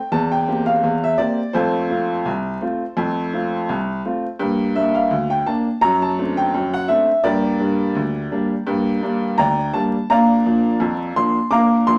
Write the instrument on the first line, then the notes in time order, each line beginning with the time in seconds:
upright piano
Already playing: G5
0.12 E2 A5
0.32 G5
0.48 A#3 C4 G4
0.66 F5
0.83 E2
1.04 E5
1.18 A#3 C4 G4 D5
1.53 F2 A3 F4 A4 C5
1.90 A3 C4 F4
2.25 C2
2.61 A3 C4 F4
2.97 F2 A3
3.33 A3 C4 F4
3.69 C2
4.05 A3 C4 F4
4.39 G2 A#3
4.76 A#3 D4 E5
4.94 F5
5.11 D2
5.30 G5
5.46 A#3 D4 A5
5.81 F#2 A#5
6.02 A5
6.18 A3 C4 D4
6.37 G5
6.54 F#2
6.74 F#5
6.88 A3 C4 D4 E5
7.24 G2 A#3 G4 A#4 D5
7.60 G3 A#3 D4
7.95 D2
8.31 G3 A#3 D4
8.67 G2 A#3
9.02 G3 A#3 D4
9.38 D2 D5 G5 A#5
9.74 G3 A#3 D4 A5
10.10 A#2 D4 D5 F5 A#5
10.45 F3 A#3 D4
10.80 F2
11.16 F3 A#3 D4 C6
11.51 A#2 D4 F5 A#5 D6
11.87 F3 A#3 D4 C6